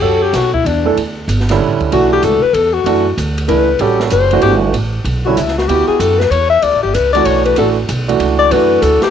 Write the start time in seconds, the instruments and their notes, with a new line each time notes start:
0.01 upright bass F#2, grand piano C#4 F#4 G4 A4, alto saxophone A4
0.22 alto saxophone G4
0.33 upright bass B1, alto saxophone F#4, snare, hi-hat pedal, ride
0.54 alto saxophone E4, kick
0.65 upright bass E2, alto saxophone D4, ride
0.85 grand piano E3 A3 D4 A4
0.96 upright bass D2, ride
1.28 upright bass G1, hi-hat pedal, ride
1.40 snare
1.49 grand piano D3 G3 C#4 E4, snare, ride
1.60 upright bass A1
1.80 muted upright bass stroke, kick, ride
1.92 upright bass B1, grand piano E3 A3 D4 F#4, alto saxophone F#4, ride
2.13 alto saxophone G4
2.22 upright bass C#2, alto saxophone A4, hi-hat pedal, ride
2.43 alto saxophone B4, muted upright bass stroke
2.53 upright bass E2, alto saxophone A4, ride
2.73 alto saxophone F#4
2.84 upright bass F#2, grand piano E3 A3 D4 F#4, ride
3.17 upright bass D2, hi-hat pedal, ride
3.38 ride
3.48 upright bass C#2, grand piano E3 A3 D4 E4, alto saxophone B4, ride
3.79 upright bass A1, grand piano G3 C#4 F#4 A4, alto saxophone G4, ride
4.00 snare
4.10 upright bass F#1, alto saxophone C5, hi-hat pedal, ride
4.31 grand piano E3 A3 D4 F#4, ride
4.42 upright bass G1, alto saxophone G4, ride
4.73 upright bass A1, ride
5.04 upright bass B1, ride
5.25 grand piano D3 G3 C#4 E4, alto saxophone F#4
5.37 upright bass C#2, alto saxophone E4, hi-hat pedal, ride
5.48 snare
5.58 alto saxophone F#4, snare
5.68 upright bass D2, grand piano B3 E4 F#4 G4, alto saxophone G4, ride
5.88 alto saxophone G#4, muted upright bass stroke
5.99 upright bass F#2, alto saxophone A4, hi-hat pedal, ride
6.19 alto saxophone B4, snare
6.30 upright bass E2, alto saxophone C#5, ride
6.50 alto saxophone E5
6.62 upright bass D2, alto saxophone D5, ride
6.73 upright bass A1
6.83 upright bass G1, alto saxophone G4
6.94 upright bass C#2, alto saxophone B4, hi-hat pedal, ride
7.13 grand piano E3 A3 D4 F#4, alto saxophone D5, ride
7.25 upright bass B1, alto saxophone C#5, ride
7.45 alto saxophone B4, ride
7.56 upright bass A1, grand piano E3 A3 D4 F#4, alto saxophone A4, ride
7.89 upright bass B1, hi-hat pedal, ride
8.08 grand piano E3 A3 D4 F#4, ride
8.19 upright bass C#2, ride
8.39 alto saxophone D5
8.51 upright bass F#2, grand piano E3 A3 D4 F#4, alto saxophone B4, ride
8.82 upright bass D2, alto saxophone A4, hi-hat pedal, ride
9.02 alto saxophone G4, muted upright bass stroke, snare, ride